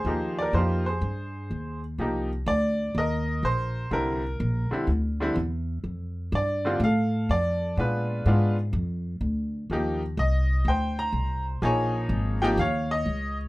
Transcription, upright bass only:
X:1
M:4/4
L:1/8
Q:"Swing" 1/4=125
K:Cm
V:1 name="Upright bass" clef=bass
E,,2 F,,2 G,,2 E,,2 | C,,2 D,,2 E,,2 B,,,2 | C,,2 B,,, z D,,2 =E,,2 | F,,2 G,,2 =A,,2 F,,2 |
B,,2 A,,2 F,,2 D,,2 | E,,2 C,,2 D,,2 C,,2 | B,,,2 A,,,2 E,,2 _D,,2 |]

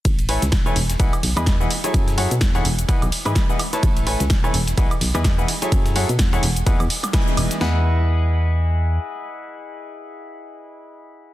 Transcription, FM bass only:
X:1
M:4/4
L:1/16
Q:"Swing 16ths" 1/4=127
K:E
V:1 name="FM bass" clef=bass
A,,,3 C,, E,,,2 E,,,2 B,,, z B,,, E,,3 z2 | F,,3 B,, E,,2 E,,,2 z B,,, z G,, z4 | A,,,3 C,, E,,,2 E,,,2 B,,, z B,,, E,,3 z2 | F,,3 B,, E,,2 E,,,2 E,, E,, z4 E,,, z |
E,,12 z4 | z16 |]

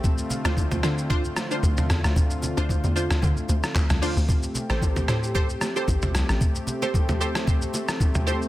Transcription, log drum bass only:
X:1
M:4/4
L:1/16
Q:"Swing 16ths" 1/4=113
K:Am
V:1 name="Log drum bass" clef=bass
z3 D,,3 D,4 z2 D,,2 E,, D,, | D,,3 D,,2 E,,2 D,, D, z D,, z D,, C,, z D,, | z3 A,,,3 A,,4 z2 A,,,2 C,, A,,, | z16 |]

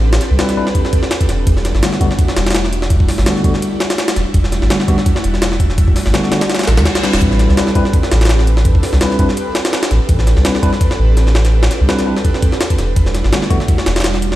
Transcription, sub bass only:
X:1
M:4/4
L:1/16
Q:"Swing 16ths" 1/4=167
K:Am
V:1 name="Sub bass" clef=bass
A,,,2 z C,, z8 z2 E,,,2 | E,,,3 G,,, z6 E,,,6- | E,,,2 z G,,, z8 z2 E,,, z | E,,,3 G,,, z6 E,,,6- |
E,,,2 z G,,, z6 A,,, E,, z3 E,,, | A,,,3 C,, z6 A,,,6- | A,,,2 z C,, z8 z2 A,,, z | A,,,3 C,, z6 A,,,6- |
A,,,2 z C,, z8 z2 E,,,2 | E,,,3 G,,, z6 E,,,6 |]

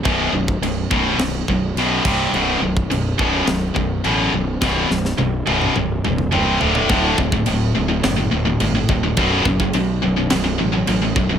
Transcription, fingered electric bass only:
X:1
M:4/4
L:1/8
Q:1/4=105
K:Bm
V:1 name="Fingered electric bass" clef=bass
B,,,, B,,,, B,,,, B,,,, B,,,, B,,,, B,,, =C,,, | B,,,, B,,,, B,,,, B,,,, B,,,, B,,,, A,,, B,,,, | B,,,, B,,,, B,,,, B,,,, B,,,, B,,,, =C,,, D,,, | D,,, D,,, D,,, D,,, F,,, D,,, G,,, D,,, |
B,,,, F,,, B,,, B,,,, B,,,, A,,, A,,, B,,,, |]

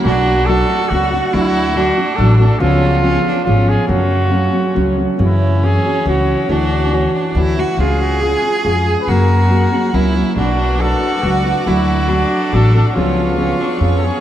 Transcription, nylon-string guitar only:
X:1
M:3/4
L:1/8
Q:1/4=140
K:F#m
V:1 name="Nylon-string guitar"
[B,,F,A,DF]2 [F,A,DF] [A,D] [F,A,DF] [A,DF] | [D,F,A,DF]2 [F,A,DF] [A,DF] [F,A,DF] [A,DF] | [C,^E,B,CG]2 [E,B,CG]2 [E,B,CG]2 | [F,,C,F,A,CF]2 [F,A,CF] [F,A,CF] [F,A,CF] [F,A,CF] |
[F,,C,E,A,CF]2 [E,A,CF] [E,A,CF] [E,A,CF]2 | [D,E,A,EF]2 [E,A,EF]2 [E,A,EF] [A,EF] | [C,G,C^EG]2 [G,CEG] [CE] [G,CEG]2 | [F,,C,F,^A,CF]2 [F,A,CF] [F,A,CF] [F,A,CF] [F,A,CF] |
[B,,F,A,DF]2 [F,A,DF]2 [F,A,DF] [A,DF] | [D,F,A,DF]2 [F,A,DF]2 [F,A,DF] [A,DF] | [C,^E,B,CG]2 [E,B,CG] [B,CG] [E,B,CG] [B,CG] |]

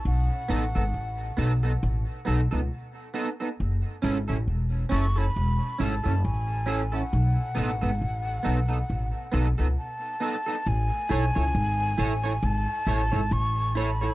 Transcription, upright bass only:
X:1
M:4/4
L:1/16
Q:"Swing 16ths" 1/4=68
K:Bmix
V:1 name="Upright bass" clef=bass
B,,, z A,,, G,,, A,,,2 B,,,2 A,,, z B,,, C,, z4 | F,,, z G,,, A,,, E,,,2 F,,,2 E,,, z G,,, F,,, A,,,4 | B,,, z A,,, G,,, A,,,2 B,,,2 A,,, z B,,, C,, z4 | A,,, z B,,, C,, G,,,2 A,,,2 G,,, z A,,, G,,, A,,,4 |]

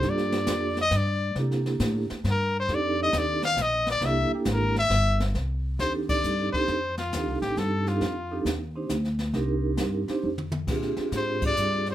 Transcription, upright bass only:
X:1
M:3/4
L:1/8
Q:"Swing" 1/4=135
K:Fmix
V:1 name="Upright bass" clef=bass
G,,2 F,,2 G,,2 | C,2 A,, z G,,2 | F,,2 E,,2 B,,,2 | C,, z _A,,,2 G,,,2 |
C,,2 E,,2 G,, z | F,,2 (3E,, C,, A,,, G,,2 | F,,2 E,,2 D,,2 | C,,2 G,, z F,,2 |
B,, z _A,,2 G,,2 |]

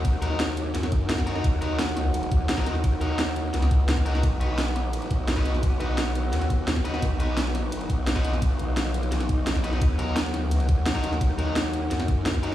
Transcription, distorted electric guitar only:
X:1
M:4/4
L:1/16
Q:1/4=172
K:Ebm
V:1 name="Distorted electric guitar"
z2 [EGB]2 z8 z2 [EGB] [EGB] | z2 [EGB]2 z8 z [EGB]2 z | z2 [EGB]2 z8 z2 [EGB] [EGB] | z2 [^D^F=B]2 z8 z [DFB]2 z |
z2 [^D^F=B]2 z8 z2 [DFB] [DFB] | z2 [^D^F=B]2 z8 z [DFB]2 z | z12 z2 [^D^F=B] [DFB] | z2 [EGB]2 z8 z [EGB]2 z |
z2 [EGB]2 z8 z2 [EGB] B |]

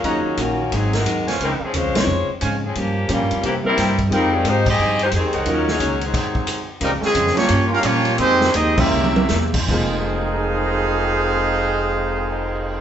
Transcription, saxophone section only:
X:1
M:4/4
L:1/8
Q:"Swing" 1/4=177
K:Fm
V:1 name="Saxophone section"
[_G,DEA]2 [E,B,D_G]2 [G,CEA] [A,EGB]2 z | [G,CEB] [F,CDA] [A,DFc] [A,Fcd]2 z2 [F,CDA] | [F,B,DG]2 [G,B,DF]2 [=E,B,CG] [G,C=EB]2 z | [G,CEB] [E,G,CA] [A,EGc] [CGAe]2 [A,EGc] [E,CGA]2 |
[_G,DEB] [G,DEA]2 [G,CEA]4 z | z8 | z8 | z8 |
z8 |]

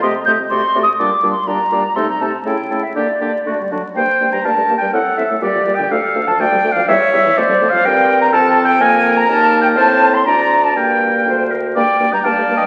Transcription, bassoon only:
X:1
M:2/4
L:1/16
Q:1/4=123
K:Gm
V:1 name="Bassoon" clef=bass
C,2 C,2 C,2 C,2 | B,,2 B,,2 B,,2 B,,2 | C,2 C,2 ^C,2 C,2 | D,2 D,2 D,2 D,2 |
G,, z G,, G,, G,, G,, G,, G,, | A,, z A,, A,, B,, B,, B,, B,, | D,, z D,, D,, D,, D,, D,, D,, | =E,, z E,, E,, F,, F,, F,, F,, |
G,,4 F,,4 | F,,4 E,,4 | A,,4 D,,4 | G,,4 D,,4 |
G,, z G,, G,, G,, G,, G,, G,, |]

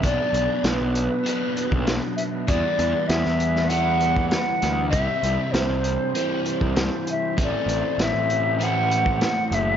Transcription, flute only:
X:1
M:4/4
L:1/8
Q:1/4=98
K:Ador
V:1 name="Flute"
d2 B4 z e | d2 e2 f2 f2 | e2 c4 z e | d2 e2 f2 f e |]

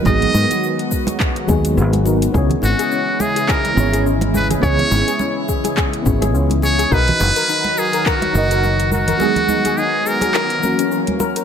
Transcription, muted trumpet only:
X:1
M:4/4
L:1/8
Q:"Swing 16ths" 1/4=105
K:C#dor
V:1 name="Muted trumpet"
d3 z4 z | z F2 G A2 z B | c3 z4 c | B3 G F3 F- |
F2 G A4 z |]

